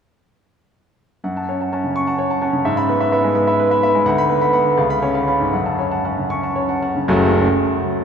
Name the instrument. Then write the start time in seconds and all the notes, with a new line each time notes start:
grand piano
1.24 F#2 F#5
1.36 F#5 A5
1.48 C#4 C#5
1.61 F#5 A5
1.73 C#4 F#5 A5
1.84 C#3
1.96 C#4 C#6
2.07 F#5 A5
2.19 C#5
2.30 F#5 A5
2.42 C#4 F#5 A5
2.53 C#3
2.65 G#2 E5
2.77 E5 B5
2.89 B3 B4
3.00 E5 B5
3.12 B3 E5 B5
3.24 G#3
3.35 B3 B5
3.47 E5 B5
3.60 B4
3.71 E5 B5
3.83 B3 E5 B5
3.95 G#3
4.06 D2 F#5
4.18 F#5 B5
4.29 B3 B4
4.41 F#5 B5
4.53 B3 F#5 B5
4.65 D3
4.78 C#2 F5
4.90 F5 B5
5.02 C#4 C#5
5.15 F5 B5
5.28 C#4 F5 B5
5.40 G#2
5.53 F#2 F#5
5.66 F#5 A5
5.79 C#4 C#5
5.91 F#5 A5
6.05 C#4 F#5 A5
6.17 C#3
6.30 C#4 C#6
6.43 F#5 A5
6.56 C#5
6.69 F#5 A5
6.82 C#4 F#5 A5
6.96 C#3
7.08 F#1 C#2 F#3 A3 C#4 F#4